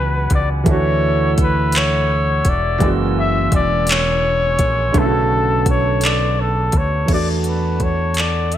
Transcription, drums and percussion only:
0.30 kick medium
0.30 closed hi-hat medium
0.66 kick loud
0.66 closed hi-hat medium
1.38 kick loud
1.38 closed hi-hat medium
1.72 clap loud
1.72 closed hi-hat medium
2.45 kick medium
2.45 closed hi-hat medium
2.80 kick loud
2.80 closed hi-hat medium
3.52 kick medium
3.52 closed hi-hat medium
3.87 clap loud
3.87 closed hi-hat medium
4.59 kick medium
4.59 closed hi-hat medium
4.94 kick loud
4.94 closed hi-hat medium
5.66 kick medium
5.66 closed hi-hat medium
6.01 clap loud
6.01 closed hi-hat medium
6.72 kick medium
6.72 closed hi-hat medium
7.08 kick loud
7.08 closed hi-hat medium
7.08 crash medium
7.44 closed hi-hat soft
7.80 kick medium
7.80 closed hi-hat soft
8.14 clap medium
8.14 closed hi-hat medium
8.52 closed hi-hat soft

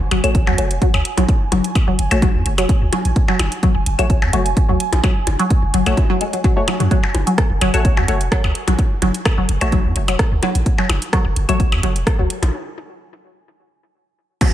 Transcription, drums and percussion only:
0.11 closed hi-hat medium
0.11 percussion blips medium
0.24 closed hi-hat medium
0.24 claves medium
0.35 kick loud
0.35 closed hi-hat soft
0.47 percussion blips medium
0.58 closed hi-hat medium
0.71 closed hi-hat medium
0.82 kick loud
0.82 closed hi-hat soft
0.94 percussion blips medium
1.05 closed hi-hat medium
1.17 closed hi-hat medium
1.17 percussion blips medium
1.29 kick loud
1.29 closed hi-hat soft
1.52 closed hi-hat medium
1.52 percussion blips medium
1.64 closed hi-hat medium
1.75 kick loud
1.75 closed hi-hat soft
1.75 percussion blips medium
1.99 closed hi-hat medium
2.11 closed hi-hat soft
2.11 claves medium
2.11 percussion blips medium
2.22 kick loud
2.22 closed hi-hat soft
2.22 percussion blips medium
2.46 closed hi-hat medium
2.58 closed hi-hat medium
2.58 percussion blips medium
2.69 kick loud
2.69 closed hi-hat soft
2.93 closed hi-hat medium
2.93 percussion blips medium
3.05 closed hi-hat medium
3.16 kick loud
3.16 closed hi-hat soft
3.28 percussion blips medium
3.39 closed hi-hat medium
3.39 percussion blips medium
3.52 closed hi-hat soft
3.63 kick loud
3.63 closed hi-hat soft
3.86 closed hi-hat medium
3.99 closed hi-hat soft
3.99 claves medium
4.10 kick loud
4.10 closed hi-hat soft
4.22 percussion blips medium
4.33 closed hi-hat medium
4.46 closed hi-hat medium
4.57 kick loud
4.57 closed hi-hat soft
4.80 closed hi-hat medium
4.93 closed hi-hat medium
4.93 percussion blips medium
5.04 kick loud
5.04 closed hi-hat soft
5.04 percussion blips medium
5.27 closed hi-hat medium
5.27 percussion blips medium
5.39 closed hi-hat soft
5.50 kick loud
5.50 closed hi-hat soft
5.74 closed hi-hat medium
5.86 closed hi-hat soft
5.86 claves medium
5.86 percussion blips medium
5.97 kick loud
5.97 closed hi-hat soft
5.97 percussion blips medium
6.21 closed hi-hat medium
6.33 closed hi-hat soft
6.44 kick loud
6.44 closed hi-hat soft
6.68 closed hi-hat medium
6.68 percussion blips medium
6.80 closed hi-hat medium
6.91 kick loud
6.91 closed hi-hat soft
7.04 percussion blips medium
7.15 closed hi-hat medium
7.15 percussion blips medium
7.27 closed hi-hat soft
7.38 kick loud
7.38 cross-stick medium
7.38 closed hi-hat soft
7.61 closed hi-hat medium
7.61 percussion blips medium
7.74 closed hi-hat soft
7.74 claves medium
7.85 kick loud
7.85 closed hi-hat soft
7.97 percussion blips medium
8.08 closed hi-hat medium
8.21 closed hi-hat soft
8.32 kick loud
8.32 cross-stick medium
8.32 closed hi-hat soft
8.44 percussion blips medium
8.55 closed hi-hat medium
8.68 closed hi-hat medium
8.68 percussion blips medium
8.79 kick loud
8.79 closed hi-hat soft
9.02 closed hi-hat medium
9.02 percussion blips medium
9.14 closed hi-hat medium
9.25 kick loud
9.25 cross-stick medium
9.25 closed hi-hat soft
9.25 percussion blips medium
9.49 closed hi-hat medium
9.61 closed hi-hat soft
9.61 claves medium
9.61 percussion blips medium
9.72 kick loud
9.72 closed hi-hat soft
9.72 percussion blips medium
9.96 closed hi-hat medium
10.08 closed hi-hat soft
10.08 percussion blips medium
10.19 kick loud
10.19 cross-stick medium
10.19 closed hi-hat soft
10.43 closed hi-hat medium
10.43 percussion blips medium
10.55 closed hi-hat medium
10.66 kick loud
10.66 closed hi-hat soft
10.78 percussion blips medium
10.89 closed hi-hat medium
10.89 percussion blips medium
11.02 closed hi-hat medium
11.13 kick loud
11.13 cross-stick medium
11.13 closed hi-hat soft
11.36 closed hi-hat medium
11.49 closed hi-hat medium
11.49 claves medium
11.60 kick loud
11.60 closed hi-hat soft
11.72 percussion blips medium
11.83 closed hi-hat medium
11.96 closed hi-hat medium
12.07 kick loud
12.07 cross-stick medium
12.07 closed hi-hat soft
12.30 closed hi-hat medium
12.43 closed hi-hat medium
12.43 percussion blips medium
14.41 kick loud
14.41 closed hi-hat soft
14.41 crash loud
14.41 percussion blips soft

